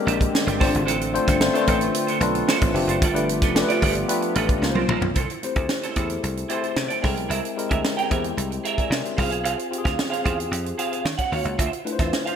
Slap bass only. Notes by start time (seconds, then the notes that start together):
0.07 A#1
0.47 G1
0.61 A1
0.75 G#1
0.87 A1
1.28 G1
1.68 A1
2.20 B1
2.61 A1
2.74 F1
2.87 F#1
3.02 G1
3.42 F1
3.82 G1
4.36 A1
4.62 C#2
4.75 C2
4.88 A#1
5.01 B1
5.16 C2
5.56 D2
5.96 E2
6.23 C2
6.76 C3
7.04 C2
7.17 B1
7.30 C2
7.71 D2
8.11 E2
8.37 C2
8.90 C3
9.18 C2
9.31 B1
9.44 C2
9.85 D2
10.25 E2
10.51 F2
11.05 D#3
11.32 D#2
11.45 C#2
11.58 D2
11.99 E2